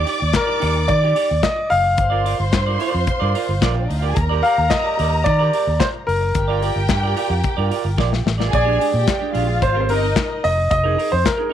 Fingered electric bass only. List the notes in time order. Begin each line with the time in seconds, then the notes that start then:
0.22 D#2
0.63 D#2
0.89 D#3
1.31 D#2
1.72 F#1
1.98 G1
2.40 G1
2.53 G2
2.95 F2
3.08 muted fingered electric bass stroke
3.22 G2
3.49 G1
3.62 A#1
3.90 D2
4.17 D#2
4.58 D#2
5.00 D#2
5.27 D#3
5.67 D#2
6.08 F#1
6.36 G1
6.76 G1
6.90 G2
7.30 F2
7.44 muted fingered electric bass stroke
7.58 G2
7.85 G1
7.99 A#1
8.26 A1
8.53 A#1
8.94 A#2
9.35 A#1
9.62 G#1
9.89 G1
10.45 F1
10.71 F1
11.13 F2